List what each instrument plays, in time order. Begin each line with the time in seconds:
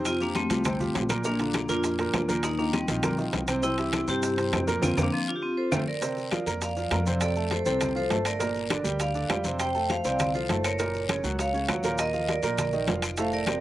Already playing: upright bass F2, grand piano C3 C4 C5
0.05 vibraphone C4 F4, high bongo, high conga, high timbale, long guiro, claves, maracas
0.20 grand piano F3 F4 G4, vibraphone A#3 D4, high bongo, high conga, maracas
0.35 vibraphone A3 C4, high bongo, high conga, high timbale, low timbale, short guiro, maracas
0.50 upright bass C2, grand piano F3 F4 G4, high bongo, high conga, high timbale, short guiro, maracas
0.64 grand piano C3 C4 C5, high bongo, high conga, low conga, high timbale, long guiro, claves, maracas
0.80 grand piano F3 F4 G4, high bongo, high conga, low conga, maracas
0.95 upright bass A#1, high bongo, low bongo, high conga, high timbale, low timbale, short guiro, maracas
1.09 grand piano A#2 A#3 A#4, high conga, high timbale, short guiro, claves, maracas
1.24 grand piano A#2 A#3 A#4, vibraphone A#3 D4, high bongo, high conga, long guiro, maracas
1.39 grand piano D3 D4 F4, high bongo, high conga, high timbale, maracas
1.54 high bongo, high conga, high timbale, low timbale, short guiro, claves, maracas
1.69 upright bass F2, grand piano A#2 A#3 A#4, vibraphone D4 F4, high bongo, high conga, short guiro, maracas
1.84 high bongo, high conga, high timbale, long guiro, maracas
1.99 grand piano A#2 A#3 A#4, high bongo, high conga, high timbale, maracas
2.13 upright bass D#2, high bongo, low bongo, high conga, high timbale, low timbale, short guiro, claves, maracas
2.28 grand piano A#2 A#3 A#4, high conga, short guiro, maracas
2.43 vibraphone A#3 D#4, high bongo, high timbale, long guiro, claves, maracas
2.58 grand piano D#3 D#4 F4, vibraphone A#3 D4, high bongo, high conga, maracas
2.73 vibraphone G3 C4, high bongo, high conga, high timbale, low timbale, short guiro, maracas
2.88 upright bass A#1, grand piano D#3 D#4 F4, high bongo, high conga, high timbale, short guiro, maracas
3.03 grand piano A#2 A#3 A#4, high bongo, high conga, low conga, high timbale, long guiro, claves, maracas
3.18 grand piano D#3 D#4 F4, high bongo, high conga, maracas
3.33 upright bass C2, high bongo, low bongo, high conga, high timbale, low timbale, short guiro, maracas
3.48 grand piano C3 C4 C5, high conga, high timbale, short guiro, claves, maracas
3.62 grand piano C3 C4 C5, vibraphone C4 E4, high bongo, high conga, long guiro, maracas
3.78 grand piano E3 E4 G4, high bongo, high conga, high timbale, maracas
3.93 high bongo, high conga, high timbale, low timbale, short guiro, claves, maracas
4.07 upright bass G2, grand piano C3 C4 C5, vibraphone E4 G4, high bongo, high conga, short guiro, maracas
4.23 high bongo, high conga, high timbale, long guiro, maracas
4.37 grand piano C3 C4 C5, high bongo, high conga, high timbale, maracas
4.53 upright bass F2, high bongo, low bongo, high conga, high timbale, low timbale, short guiro, claves, maracas
4.67 grand piano A#2 A#3 A#4, high conga, short guiro, maracas
4.82 upright bass F2, grand piano A#3 C4 F4, vibraphone C4 F4, low bongo, low conga, high timbale, long guiro, claves, maracas
4.97 upright bass F2, grand piano A#3 C4 F4, low bongo, low conga, high timbale, long guiro, claves, maracas
5.03 vibraphone A#3 D4
5.13 vibraphone F3 C4
5.28 vibraphone D4 F4
5.36 vibraphone G4
5.42 vibraphone C4 F4
5.57 vibraphone A4 C5
5.72 upright bass F2, grand piano A3 C4 F4, low bongo, low conga, high timbale, long guiro, claves, maracas
5.88 vibraphone A#4 D5
6.01 grand piano C3 C4 C5, high bongo, high conga, high timbale, long guiro, maracas
6.17 high bongo, high conga, maracas
6.31 grand piano F3 F4 F5, high bongo, high conga, high timbale, low timbale, short guiro, claves, maracas
6.46 upright bass F2, grand piano A#3 A#4 A#5, high bongo, high conga, short guiro, maracas
6.61 vibraphone D5 F5, high bongo, high conga, high timbale, long guiro, maracas
6.76 grand piano F3 F4 F5, high bongo, high conga, maracas
6.91 upright bass F2, grand piano A#3 A#4 A#5, high bongo, low bongo, high conga, high timbale, low timbale, short guiro, claves, maracas
7.06 grand piano C3 C4 C5, high conga, short guiro, maracas
7.21 vibraphone A4 D5, high bongo, high conga, high timbale, long guiro, claves, maracas
7.36 grand piano A3 A4 A5, high bongo, high conga, maracas
7.51 vibraphone A4 C5, high bongo, high conga, high timbale, low timbale, short guiro, maracas
7.65 upright bass C2, grand piano C3 C4 C5, vibraphone A4 C5, high bongo, high conga, short guiro, maracas
7.81 high bongo, high conga, low conga, high timbale, long guiro, claves, maracas
7.95 grand piano F3 F4 F5, vibraphone A4 C5, high bongo, high conga, maracas
8.10 upright bass G1, grand piano A3 A4 A5, high bongo, low bongo, high conga, high timbale, low timbale, short guiro, maracas
8.25 vibraphone A#4 D5, high conga, high timbale, short guiro, claves, maracas
8.39 grand piano A#2 A#3 A#4, high bongo, high conga, high timbale, long guiro, maracas
8.55 high bongo, high conga, maracas
8.70 grand piano D3 D4 D5, high bongo, high conga, high timbale, low timbale, short guiro, claves, maracas
8.84 upright bass D2, grand piano G3 G4 G5, high bongo, high conga, short guiro, maracas
8.99 vibraphone D5 F5, high bongo, high conga, high timbale, long guiro, maracas
9.15 grand piano D3 D4 D5, high bongo, high conga, maracas
9.29 upright bass F2, grand piano G3 G4 G5, high bongo, low bongo, high conga, high timbale, low timbale, short guiro, claves, maracas
9.44 grand piano C3 C4 C5, high conga, short guiro, maracas
9.59 vibraphone C5 G5, high bongo, high conga, high timbale, long guiro, claves, maracas
9.75 grand piano A3 A4 A5, high bongo, high conga, maracas
9.89 vibraphone C5 F5, high bongo, high conga, high timbale, low timbale, short guiro, maracas
10.04 upright bass C2, grand piano C3 C4 C5, vibraphone D5 F5, high bongo, high conga, short guiro, maracas
10.19 high bongo, high conga, low conga, high timbale, long guiro, claves, maracas
10.34 grand piano F3 F4 F5, vibraphone A4 C5, high bongo, high conga, maracas
10.49 upright bass F#1, grand piano A3 A4 A5, high bongo, low bongo, high conga, high timbale, low timbale, short guiro, maracas
10.64 vibraphone A#4 C#5, high conga, high timbale, short guiro, claves, maracas
10.79 grand piano A#2 A#3 A#4, high bongo, high conga, high timbale, long guiro, maracas
10.94 high bongo, high conga, maracas
11.08 grand piano C#3 C#4 C#5, high bongo, high conga, high timbale, low timbale, short guiro, claves, maracas
11.24 upright bass C#2, grand piano F#3 F#4 F#5, high bongo, high conga, short guiro, maracas
11.39 vibraphone C#5 F5, high bongo, high conga, high timbale, long guiro, maracas
11.53 grand piano C#3 C#4 C#5, high bongo, high conga, maracas
11.68 upright bass D#2, grand piano F#3 F#4 F#5, high bongo, low bongo, high conga, high timbale, low timbale, short guiro, claves, maracas
11.83 grand piano A#2 A#3 A#4, high conga, short guiro, maracas
11.98 vibraphone A#4 D#5, high bongo, high conga, high timbale, long guiro, claves, maracas
12.13 grand piano F3 F4 F5, high bongo, high conga, maracas
12.28 vibraphone A#4 D5, high bongo, high conga, high timbale, low timbale, short guiro, maracas
12.43 upright bass A#1, grand piano A#2 A#3 A#4, vibraphone A#4 D5, high bongo, high conga, short guiro, maracas
12.57 high bongo, high conga, low conga, high timbale, long guiro, claves, maracas
12.73 grand piano D#3 D#4 D#5, high bongo, high conga, maracas
12.87 upright bass F1, grand piano F3 F4 F5, high bongo, low bongo, high conga, high timbale, low timbale, short guiro, maracas
13.02 high conga, high timbale, short guiro, claves, maracas
13.17 grand piano A2 A3 A4, vibraphone C5 F5, high bongo, high conga, high timbale, long guiro, maracas
13.32 vibraphone A#4 D5, high bongo, high conga, maracas
13.47 grand piano C3 C4 C5, high bongo, high conga, high timbale, low timbale, short guiro, claves, maracas